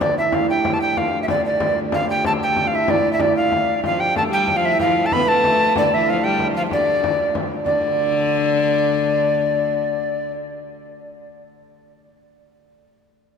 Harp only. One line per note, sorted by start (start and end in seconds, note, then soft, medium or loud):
0.00 0.24 D3 medium
0.00 0.24 F3 medium
0.00 0.94 A3 medium
0.00 0.55 B3 medium
0.00 1.28 D4 medium
0.18 1.03 E4 medium
0.50 0.80 G4 medium
0.80 2.07 G4 medium
0.97 1.92 F4 medium
1.28 1.43 D4 medium
1.43 2.87 D4 medium
1.93 2.64 F4 medium
2.08 2.39 G4 medium
2.24 4.14 A4 medium
2.40 3.98 G4 medium
2.64 2.78 F4 medium
2.72 3.11 E4 medium
2.88 3.19 D4 medium
3.12 3.42 E4 medium
3.20 5.76 D4 medium
3.36 3.84 F4 medium
3.84 4.55 F4 medium
3.98 4.30 G4 medium
4.15 5.03 A4 medium
4.30 6.24 G4 medium
4.56 4.70 F4 medium
4.64 4.85 E4 medium
4.79 5.98 F4 loud
5.03 5.27 A4 medium
5.11 7.16 B4 loud
5.28 7.47 A4 loud
5.76 6.70 D4 medium
5.92 6.12 E4 medium
6.06 6.54 F4 medium
6.24 6.50 G4 medium
6.50 8.86 G4 medium
6.55 9.07 F4 medium
6.70 7.64 D4 medium
7.64 11.02 D4 medium